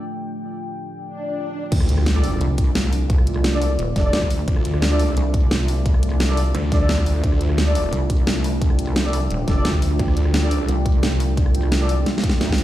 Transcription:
Already playing: ambient pad A3 D4 F4 G5
1.03 swell
1.72 detuned saw bass D2, ambient pad A3 D4 F4 D5, kick, closed hi-hat, crash, impact
1.80 cross-stick
1.89 detuned saw bass D2, closed hi-hat
1.98 cross-stick
2.06 snare, closed hi-hat
2.15 brass ensemble D4 A4 D5
2.24 open hi-hat
2.41 wobble bass C2, closed hi-hat
2.58 kick, closed hi-hat
2.75 snare, closed hi-hat
2.93 open hi-hat
3.10 kick, closed hi-hat
3.18 cross-stick
3.27 closed hi-hat
3.36 cross-stick
3.44 snare, closed hi-hat
3.53 brass ensemble D4 A4 D5
3.62 open hi-hat
3.79 wobble bass D#1, closed hi-hat
3.96 wobble bass F1, brass ensemble D4 A4 D5, kick, snare, closed hi-hat
4.05 brass ensemble D4 A4 D5
4.13 wobble bass D2, snare, closed hi-hat
4.22 kick, cross-stick
4.31 open hi-hat
4.48 detuned saw bass D2, kick, closed hi-hat
4.56 cross-stick
4.65 detuned saw bass D2, closed hi-hat
4.74 cross-stick
4.82 snare, closed hi-hat
4.91 brass ensemble D4 A4 D5
5.00 open hi-hat
5.17 wobble bass C2, closed hi-hat
5.34 kick, closed hi-hat
5.51 snare, closed hi-hat
5.68 open hi-hat
5.86 kick, closed hi-hat
5.94 cross-stick
6.03 closed hi-hat
6.12 cross-stick
6.20 snare, closed hi-hat
6.29 brass ensemble D4 A4 D5
6.37 open hi-hat
6.55 detuned saw bass D2, closed hi-hat
6.72 brass ensemble D4 A4 D5, kick, snare, closed hi-hat
6.80 brass ensemble D4 A4 D5
6.89 snare, closed hi-hat
6.98 kick, cross-stick
7.06 open hi-hat
7.23 detuned saw bass D2, ambient pad G5, kick, closed hi-hat
7.32 cross-stick
7.41 detuned saw bass D2, closed hi-hat
7.49 cross-stick
7.58 snare, closed hi-hat
7.67 brass ensemble D4 A4 D5
7.75 open hi-hat
7.93 wobble bass C2, closed hi-hat
8.10 kick, closed hi-hat
8.27 snare, closed hi-hat
8.44 open hi-hat
8.62 kick, closed hi-hat
8.70 cross-stick
8.79 closed hi-hat
8.87 cross-stick
8.96 snare, closed hi-hat
9.05 brass ensemble D4 A4 D5
9.13 open hi-hat
9.30 wobble bass D#1, closed hi-hat
9.48 wobble bass F1, brass ensemble D4 A4 D5, kick, snare, closed hi-hat
9.56 brass ensemble D4 A4 D5
9.65 wobble bass D2, snare, closed hi-hat
9.74 kick, cross-stick
9.82 open hi-hat
9.99 detuned saw bass D2, kick, closed hi-hat
10.08 cross-stick
10.17 detuned saw bass D2, closed hi-hat
10.25 cross-stick
10.34 snare, closed hi-hat
10.43 brass ensemble D4 A4 D5
10.51 open hi-hat
10.68 wobble bass C2, closed hi-hat
10.86 kick, closed hi-hat
11.03 snare, closed hi-hat
11.20 open hi-hat
11.37 kick, closed hi-hat
11.46 cross-stick
11.55 closed hi-hat
11.63 cross-stick
11.72 snare, closed hi-hat
11.81 brass ensemble D4 A4 D5
11.89 open hi-hat
12.06 snare, closed hi-hat
12.18 snare
12.24 kick, closed hi-hat
12.29 snare
12.41 wobble bass D2, snare, closed hi-hat
12.49 kick, snare
12.58 open hi-hat

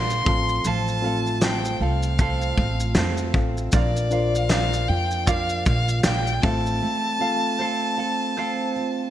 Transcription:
Already playing: upright bass A#1, steel-string acoustic guitar A#3 D4 F4, ukulele F4 A#4 D5 F5, violin C6
0.10 shaker
0.25 upright bass A1, steel-string acoustic guitar F3, reed electric piano C4 F4 A4 F5, ukulele A4 F5, kick
0.30 ukulele C4
0.49 shaker
0.65 upright bass A1, steel-string acoustic guitar F3, ukulele C4 A4 C5 F5, violin A5, shaker
0.88 shaker
1.02 steel-string acoustic guitar A3, reed electric piano C4 F4 A4 F5, ukulele A4 F5
1.07 ukulele C4
1.27 shaker
1.41 ukulele C4 A4 C5 F5, steel-string acoustic guitar C4, violin G5, snare, shaker
1.65 shaker
1.80 upright bass C2, ukulele C4 A4 F5, steel-string acoustic guitar F4, violin F5
2.03 shaker
2.19 steel-string acoustic guitar C4, ukulele C4 A4 C5 F5, kick, shaker
2.42 shaker
2.58 upright bass A1, steel-string acoustic guitar F4, kick
2.80 shaker
2.95 upright bass F2, steel-string acoustic guitar A3, ukulele C4 A4 C5 F5, snare, shaker
3.17 shaker
3.33 upright bass A1, reed electric piano C4 F4 A4 F5, steel-string acoustic guitar C4, kick
3.58 shaker
3.72 upright bass A#1, steel-string acoustic guitar F3, reed electric piano D4 F4 A#4 F5, ukulele F4 A#4 D5 F5, violin D5, kick, shaker
3.97 shaker
4.11 steel-string acoustic guitar A#3, reed electric piano D4 F4 A#4 C5, ukulele F4 A#4 F5, shaker
4.35 violin F5, shaker
4.49 steel-string acoustic guitar D4, ukulele F4 A#4 D5 F5, snare, shaker
4.73 shaker
4.88 upright bass F2, steel-string acoustic guitar F4, violin G5
5.11 shaker
5.26 steel-string acoustic guitar D4, ukulele F4 A#4 D5 F5, violin F5, kick, shaker
5.49 shaker
5.66 upright bass A#1, steel-string acoustic guitar F4, violin F5, kick, shaker
5.89 shaker
6.03 upright bass A#1, steel-string acoustic guitar A#3, ukulele F4 A#4 D5 F5, violin G5, snare, shaker
6.27 shaker
6.42 upright bass A1, steel-string acoustic guitar A3, reed electric piano C4 F4 A4 E5, ukulele C4 A4 C5 F5, violin A5, kick
6.51 reed electric piano F5
6.67 shaker
6.82 steel-string acoustic guitar A3
7.20 steel-string acoustic guitar A3, reed electric piano C4 F4 A4 F5, ukulele C4 A4 F5
7.59 steel-string acoustic guitar C4, ukulele C4 A4 C5 F5
7.97 ukulele C4 A4 F5, steel-string acoustic guitar F4
8.37 ukulele C4 A4 C5 F5, steel-string acoustic guitar C4
8.76 steel-string acoustic guitar F4

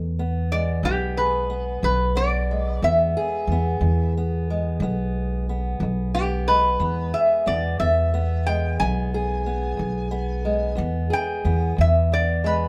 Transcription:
Already playing: steel-string acoustic guitar E2, upright bass E2
0.19 steel-string acoustic guitar B3
0.52 steel-string acoustic guitar G#3, resonator guitar played with a steel bar D5
0.83 upright bass B1, steel-string acoustic guitar E2 B3, resonator guitar played with a steel bar G4
1.17 steel-string acoustic guitar G#4, resonator guitar played with a steel bar B4
1.50 steel-string acoustic guitar B3
1.82 upright bass B1, steel-string acoustic guitar E2, resonator guitar played with a steel bar B4
2.16 steel-string acoustic guitar B3, resonator guitar played with a steel bar D5
2.51 steel-string acoustic guitar G#3
2.82 upright bass E2, steel-string acoustic guitar E2 B3, resonator guitar played with a steel bar E5
3.17 steel-string acoustic guitar G#4
3.47 upright bass E2
3.52 steel-string acoustic guitar B3
3.81 upright bass E2, steel-string acoustic guitar E2
4.17 steel-string acoustic guitar B3
4.50 steel-string acoustic guitar G#3
4.80 upright bass B1, steel-string acoustic guitar E2 B3
5.49 steel-string acoustic guitar B3
5.80 upright bass B1, steel-string acoustic guitar E2
6.15 steel-string acoustic guitar B3, resonator guitar played with a steel bar G4
6.48 steel-string acoustic guitar G#3, resonator guitar played with a steel bar B4
6.79 upright bass E2, steel-string acoustic guitar E2 B3
7.14 steel-string acoustic guitar G#4, resonator guitar played with a steel bar E5
7.46 upright bass E2, steel-string acoustic guitar B3, resonator guitar played with a steel bar D5
7.80 steel-string acoustic guitar E2, upright bass E2, resonator guitar played with a steel bar E5
8.14 steel-string acoustic guitar B3
8.46 steel-string acoustic guitar G#3, resonator guitar played with a steel bar G5
8.80 upright bass B1, steel-string acoustic guitar E2 B3, resonator guitar played with a steel bar G#5
9.14 steel-string acoustic guitar G#4
9.46 steel-string acoustic guitar B3
9.77 upright bass B1, steel-string acoustic guitar E2
10.11 steel-string acoustic guitar B3
10.45 steel-string acoustic guitar G#3
10.75 steel-string acoustic guitar E2 B3, upright bass E2
11.10 steel-string acoustic guitar G#4, resonator guitar played with a steel bar G5
11.45 upright bass E2, steel-string acoustic guitar B3
11.77 steel-string acoustic guitar E2, upright bass E2
11.81 resonator guitar played with a steel bar E5
12.12 steel-string acoustic guitar B3, resonator guitar played with a steel bar D5
12.44 steel-string acoustic guitar G#3, resonator guitar played with a steel bar B4

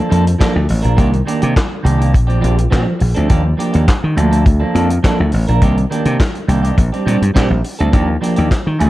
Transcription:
Already playing: clean electric guitar A4
0.09 slap bass F2, clean electric guitar F3 A#3 D4 A4, closed hi-hat
0.25 muted clean electric guitar stroke, closed hi-hat
0.39 clean electric guitar F3 A#3 D4 A4, kick, snare, clap, closed hi-hat
0.54 slap bass D2, muted clean electric guitar stroke
0.68 slap bass A1, muted clean electric guitar stroke, open hi-hat
0.82 slap bass A#1, clean electric guitar F3 A#3 D4 A#4, closed hi-hat
0.96 slap bass C2, clean electric guitar D#3 A#3 D4 G4, kick, closed hi-hat
1.12 muted clean electric guitar stroke, closed hi-hat
1.26 clean electric guitar D#3 A#3 D4 G4, closed hi-hat
1.42 slap bass C3, clean electric guitar D#3 A#3 D4 G4, closed hi-hat
1.55 muted clean electric guitar stroke, kick, snare, clap, closed hi-hat
1.70 muted clean electric guitar stroke
1.83 slap bass C2, clean electric guitar D#3 A#3 D4 G4, closed hi-hat
1.98 clean electric guitar D#3 A#3 D4 G4, closed hi-hat
2.13 slap bass A#1, muted clean electric guitar stroke, kick, closed hi-hat
2.27 clean electric guitar F3 C4 D4 G4, closed hi-hat
2.40 slap bass A#1, clean electric guitar F3 C4 D4 G4, closed hi-hat
2.57 muted clean electric guitar stroke, closed hi-hat
2.70 slap bass A#2, clean electric guitar F3 C4 D4 G4, kick, snare, clap, closed hi-hat
2.85 muted clean electric guitar stroke
2.99 slap bass A#1, muted clean electric guitar stroke, open hi-hat
3.15 slap bass D2, clean electric guitar F3 C4 D4 A4, closed hi-hat
3.28 slap bass D#2, clean electric guitar F3 A#3 D4 G4, kick, closed hi-hat
3.44 muted clean electric guitar stroke
3.57 clean electric guitar F3 A#3 D4 G4, closed hi-hat
3.73 slap bass D#2, clean electric guitar F3 A#3 D4 G4, closed hi-hat
3.87 muted clean electric guitar stroke, kick, snare, clap, closed hi-hat
4.03 slap bass D#3, muted clean electric guitar stroke
4.16 slap bass D2, clean electric guitar F3 A#3 D4 A4, closed hi-hat
4.31 clean electric guitar F3 A#3 D4 A4, closed hi-hat
4.44 muted clean electric guitar stroke, kick, closed hi-hat
4.60 clean electric guitar F3 A#3 D4 A4
4.74 slap bass F2, clean electric guitar F3 A#3 D4 A4, closed hi-hat
4.90 muted clean electric guitar stroke, closed hi-hat
5.03 clean electric guitar F3 A#3 D4 A4, kick, snare, clap, closed hi-hat
5.19 slap bass D2, muted clean electric guitar stroke
5.32 slap bass A1, muted clean electric guitar stroke, open hi-hat
5.47 slap bass A#1, clean electric guitar F3 A#3 D4 A#4, closed hi-hat
5.62 slap bass C2, clean electric guitar D#3 A#3 D4 G4, kick, closed hi-hat
5.77 muted clean electric guitar stroke, closed hi-hat
5.90 clean electric guitar D#3 A#3 D4 G4, closed hi-hat
6.05 slap bass C3, clean electric guitar D#3 A#3 D4 G4, closed hi-hat
6.18 muted clean electric guitar stroke, kick, snare, clap, closed hi-hat
6.34 muted clean electric guitar stroke, closed hi-hat
6.48 slap bass C2, clean electric guitar D#3 A#3 D4 G4, closed hi-hat
6.63 clean electric guitar D#3 A#3 D4 G4, closed hi-hat
6.77 slap bass A#1, muted clean electric guitar stroke, kick, closed hi-hat
6.92 clean electric guitar G3 C4 D4 G4, closed hi-hat
7.06 slap bass A#2, clean electric guitar G3 C4 D4 G4, closed hi-hat
7.21 slap bass G2, muted clean electric guitar stroke, closed hi-hat
7.34 slap bass A#2, clean electric guitar G3 C4 D4 G4, kick, snare, clap, closed hi-hat
7.50 slap bass A#1, muted clean electric guitar stroke
7.64 muted clean electric guitar stroke, open hi-hat
7.79 slap bass D2, clean electric guitar G3 C4 D4 A4, closed hi-hat
7.92 slap bass D#2, clean electric guitar F3 A#3 D4 G4, kick, closed hi-hat
8.08 muted clean electric guitar stroke
8.21 clean electric guitar F3 A#3 D4 G4, closed hi-hat
8.36 slap bass D#2, clean electric guitar F3 A#3 D4 G4, closed hi-hat
8.50 muted clean electric guitar stroke, kick, snare, clap, closed hi-hat
8.65 slap bass D#3, muted clean electric guitar stroke
8.79 slap bass D2, clean electric guitar F3 A#3 D4 A4, closed hi-hat

